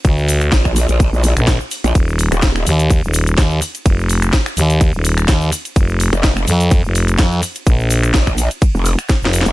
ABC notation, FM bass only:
X:1
M:4/4
L:1/16
Q:"Swing 16ths" 1/4=126
K:Eblyd
V:1 name="FM bass" clef=bass
D,,4 z6 z B,,,2 z3 | E,,,3 z3 E,,3 E,,,3 E,,2 z2 | F,,,4 z2 E,,3 E,,,3 E,,2 z2 | F,,,3 z3 F,,3 F,,,3 F,,2 z2 |
B,,,4 z8 z F,,,2 z |]